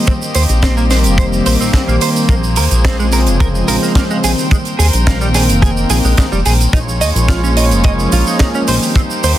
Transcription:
Already playing: A#3 G4 C5 D#5
0.06 D#3 G3 A#3 C4, kick, closed hi-hat, shaker
0.22 shaker
0.35 D#2 C5, open hi-hat, shaker
0.49 A#1 D#3 G3 A#3 C4, closed hi-hat, shaker
0.63 C4, kick, snare, closed hi-hat, shaker
0.77 D#3 G3 A#3 C4, shaker
0.91 C5, snare, open hi-hat, shaker
1.04 F1, closed hi-hat, shaker
1.18 D#3 G3 A#3 C4 C5, kick, closed hi-hat, shaker
1.33 shaker
1.46 A#1 C5, open hi-hat, shaker
1.60 A#1 D#3 G3 A#3 C4, shaker
1.74 C4, kick, snare, closed hi-hat, shaker
1.88 A#1 A#3, shaker
2.01 D#3 G3 A#3 C4 C5, open hi-hat, shaker
2.16 shaker
2.29 A#1 C#3 F3 G#3 A#3 C4 G#4, kick, closed hi-hat, shaker
2.43 shaker
2.56 D#2 A#4, open hi-hat, shaker
2.71 A#1 C#3 F3 G#3 C4, closed hi-hat, shaker
2.85 C4, kick, snare, closed hi-hat, shaker
2.99 C#3 F3 G#3 C4, shaker
3.12 A#4, open hi-hat, shaker
3.27 F1, closed hi-hat, shaker
3.40 C#3 F3 G#3 C4 A#4, kick, closed hi-hat, shaker
3.55 shaker
3.68 A#1 A#4, open hi-hat, shaker
3.82 C#3 F3 G#3 A#3 C4, shaker
3.95 A#3, kick, snare, closed hi-hat, shaker
4.10 G#3, shaker
4.23 A#1 D#3 G3 A#3 C4 G#4 A#4 G5, open hi-hat, shaker
4.38 shaker
4.51 D#3 G3 G#3 A#3 C4, kick, closed hi-hat, shaker
4.65 closed hi-hat, shaker
4.79 D#2 G#4, open hi-hat, shaker
4.93 A#1 D#3 G3 A#3 C4, closed hi-hat, shaker
5.07 A#3, kick, snare, closed hi-hat, shaker
5.20 D#3 G3 A#3 C4, shaker
5.34 G#4, snare, open hi-hat, shaker
5.49 F1, closed hi-hat, shaker
5.62 D#3 A#3 C4 G#4, kick, closed hi-hat, shaker
5.77 shaker
5.90 A#1 G#4, open hi-hat, shaker
6.04 A#1 G#3, shaker
6.17 D#3 G3 G#3 A#3 C4, kick, snare, closed hi-hat, shaker
6.32 F1 G3, shaker
6.45 A#1 D#3 G3 A#3 C4 G#4, open hi-hat, shaker
6.61 closed hi-hat, shaker
6.73 A#1 F3 G#3 A#3 C#4 D#4 F4 C#5, kick, closed hi-hat, shaker
6.89 shaker
7.01 D#2 D#5, open hi-hat, shaker
7.15 A#1 F3 G#3 A#3 C#4, closed hi-hat, shaker
7.28 F4, kick, snare, closed hi-hat, shaker
7.43 F3 G#3 A#3 C#4, shaker
7.57 D#5, open hi-hat, shaker
7.71 F1, closed hi-hat, shaker
7.84 F3 G#3 A#3 C#4 D#5, kick, closed hi-hat, shaker
7.99 shaker
8.12 A#1 F4, open hi-hat, shaker
8.26 F3 G#3 A#3 C#4 D#4, shaker
8.39 D#4, kick, snare, closed hi-hat, shaker
8.54 C#4, shaker
8.67 A#1 D#3 G3 A#3 C4 G4 C5, open hi-hat, shaker
8.83 shaker
8.95 D#3 G3 A#3 C4, kick, closed hi-hat, shaker
9.10 shaker
9.23 D#2 C5, open hi-hat, shaker

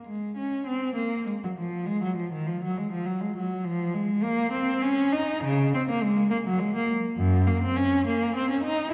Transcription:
0.05 G#3
0.37 C#4
0.67 C4
0.96 A#3
1.26 G#3
1.44 F#3
1.58 F3
1.86 G#3
2.04 F#3
2.16 F3
2.33 D#3
2.47 F3
2.63 F#3
2.78 G#3
2.91 F3
3.06 F#3
3.21 G#3
3.36 F#3
3.64 F3
3.94 G#3
4.23 A#3
4.52 C4
4.82 C#4
5.13 D#4
5.44 C#3
5.75 C4
5.90 A#3
6.03 G#3
6.31 A#3
6.47 F#3
6.59 G#3
6.76 A#3
7.17 F#2
7.47 A#3
7.63 C4
7.77 C#4
8.07 A#3
8.36 C4
8.51 C#4
8.64 D#4

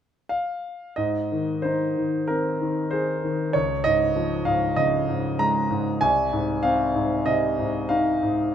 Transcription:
0.29 F5
0.96 G#2 D#5
1.32 D#3
1.62 D#4 C5
1.97 D#3
2.28 C4 A#4
2.61 D#3
2.91 G#4 C5
3.24 D#3
3.53 C#2 C#5
3.84 G#2 D#5
4.16 F3
4.45 G#2 F5
4.76 C#3 D#5
5.09 G#2
5.39 G#3 A#5
5.71 G#2
6.01 C2 G#5
6.33 G#2
6.63 C4 F5
6.95 G#2
7.26 C3 D#5
7.59 G#2
7.89 D#4 F5
8.23 G#2

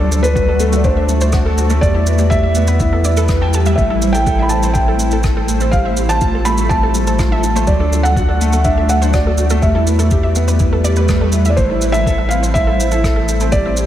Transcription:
Already playing: D2 A3 F#4 D5
0.00 D4
0.11 A4, shaker
0.23 D4 A4 B4, shaker
0.35 F#4, kick, shaker
0.48 A4 D5
0.60 A3 A4, shaker
0.72 A3 F#4, shaker
0.77 D5
0.84 D4 C5, kick, shaker
0.97 A4 E5
1.09 A3, shaker
1.21 D4 C5, shaker
1.32 F#4, kick, cross-stick, shaker
1.45 A4
1.58 F#4, shaker
1.70 A3 A4, shaker
1.81 E2 G3 E4 B4 D5, kick, shaker
1.94 E4 A4
2.07 B4, shaker
2.18 E4 G4, shaker
2.30 G4 E5, kick, shaker
2.43 E5
2.55 B3, shaker
2.67 B3 B4, shaker
2.80 E4, kick, shaker
2.93 A4 B4
3.04 E4 D5, shaker
3.17 A4 B4, shaker
3.28 G3, kick, cross-stick, shaker
3.41 G5 A5
3.54 G4 A5, shaker
3.66 G4 E5, shaker
3.76 A1 A3 C5 E5, kick, shaker
3.90 E4 A4
4.02 C5, shaker
4.13 E4 A4 G5, shaker
4.27 A4, kick, shaker
4.39 E5 B5
4.49 C4 A5, shaker
4.63 C4 C5, shaker
4.74 E4 G5, kick, shaker
4.88 A4 C5
4.99 C4, shaker
5.11 E4 A4, shaker
5.23 A4, kick, cross-stick, shaker
5.36 A4
5.48 A4, shaker
5.60 C4 A4, shaker
5.71 A1 G3 F4 A4 F5, kick, shaker
5.85 C4 E5
5.97 G4, shaker
6.09 C4 C5 A5, shaker
6.21 F4, kick, shaker
6.33 A4
6.45 A3 B5, shaker
6.58 A3 A4, shaker
6.69 C4 A5, kick, shaker
6.83 G4 A4
6.95 A3, shaker
7.07 C4 A4, shaker
7.19 F4, kick, cross-stick, shaker
7.31 F4 E5
7.43 F4, shaker
7.55 A3 C5, shaker
7.67 D2 F#3 A3 F#4 D5, kick, shaker
7.80 D4 A4
7.92 A4, shaker
8.03 D4 A4 F#5, shaker
8.16 F#4, kick, shaker
8.29 A4 D5
8.41 A3, shaker
8.53 A3 A4, shaker
8.64 D4 E5, kick, shaker
8.77 A4 E5
8.89 A3 F#5, shaker
9.02 D4 C5, shaker
9.13 F#4 D5, kick, cross-stick, shaker
9.26 F#4 A4
9.38 F#4, shaker
9.50 A3 A4, shaker
9.62 E2 G3 E4 B4 E5, kick, shaker
9.75 E4 A4
9.87 B4, shaker
9.99 E4 A4, shaker
10.11 G4, kick, shaker
10.23 E5
10.35 B3, shaker
10.48 B3 B4, shaker
10.59 E4, kick, swell, shaker
10.73 A4 B4
10.84 G3 D5, shaker
10.96 B4, shaker
11.09 G3, kick, cross-stick, shaker
11.21 G3 A4
11.32 E5, shaker
11.45 E4 E5, shaker
11.50 D5
11.56 A1 A3 C5, kick, shaker
11.70 E4 A4
11.82 C5, shaker
11.92 E4 A4 E5, shaker
12.06 A4, kick, shaker
12.18 E5
12.29 C4 F5, shaker
12.43 C4 C5, shaker
12.54 E4 E5, kick, shaker
12.67 A4 C5
12.80 C4, shaker
12.91 E4 A4, shaker
13.04 A4, kick, cross-stick, shaker
13.16 A4
13.28 A4, shaker
13.40 C4 A4, shaker
13.52 A1 G3 F4 A4 D5, kick, shaker
13.66 C4 E5
13.77 G4, shaker

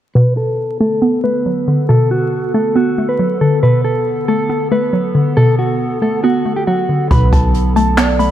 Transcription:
0.15 B2 D3 B3 A4 B4
0.37 A4
0.80 A3 A4
1.02 B3
1.24 A3 B4
1.46 F#3
1.68 D3
1.89 B2 A4
2.11 F#4
2.54 A3 A4
2.76 B3 F#4
2.98 A3
3.09 B4
3.19 F#3
3.41 D3 A4
3.63 B2 B3 B4
3.84 A4
4.28 A3 A4
4.50 B3
4.71 A3 B4
4.93 F#3
5.15 D3
5.37 B2 A4
5.59 F#4
6.02 A3 A4
6.24 B3 F#4
6.45 A3
6.56 G4
6.67 F#3 F#4
6.89 D3
7.11 B1 B2 D3 B3 A4 B4 B5, kick, closed hi-hat
7.33 B1 A5, kick, closed hi-hat
7.54 closed hi-hat
7.76 A3 A5, closed hi-hat
7.97 B3 D5, clap, closed hi-hat
8.19 A3 B5, closed hi-hat

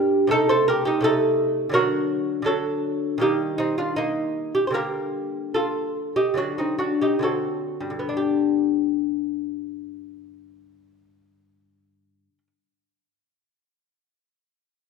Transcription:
Already playing: G2 G3 D4 G4 A#4
0.27 C3 A3 A4
0.32 D#4
0.49 A4 C5
0.68 G4 A#4
0.85 D#4 G4
1.01 C3 A3 A4
1.05 D#4
1.69 D3 F#3 D4
1.74 F#4 A#4
2.42 D3 F#3 D4 A4
2.47 F#4
3.18 D#3 G3 A#3 G4
3.22 D#4
3.58 C4 D#4
3.78 D4 F4
3.96 A#3 D#4
4.55 G4
4.67 D3 C5
4.72 G3 A#3 G4 A#4
5.54 F4 A4
6.16 D#4 G4
6.34 D3 F#3 F#4
6.38 D4
6.58 C4 D#4
6.79 D4 F#4
7.01 D#4 G4
7.19 D3 F#3 C4 A4
7.24 F#4
7.80 G2
7.90 D3
7.99 B3
8.09 D4
8.17 G4

